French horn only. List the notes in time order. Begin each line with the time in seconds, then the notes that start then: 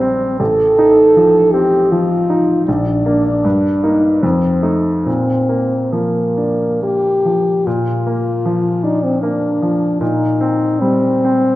Already playing: C4
0.39 A4
1.52 G4
1.91 F4
2.67 D4
3.84 D#4
4.23 C4
5.06 C4
5.93 A#3
6.83 G4
7.66 F4
8.84 D#4
9.03 C4
9.22 D4
10.01 D#4
10.81 C4